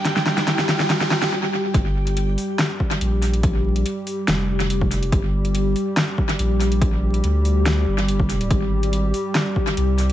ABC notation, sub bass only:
X:1
M:4/4
L:1/8
Q:"Swing 16ths" 1/4=142
K:Gphr
V:1 name="Sub bass" clef=bass
z8 | G,,,3 z3 B,,,2- | B,,,2 z2 F,,,4 | G,,,3 z3 B,,,2- |
B,,,2 D,,3 G,,,3 | A,,,3 z3 C,,2 |]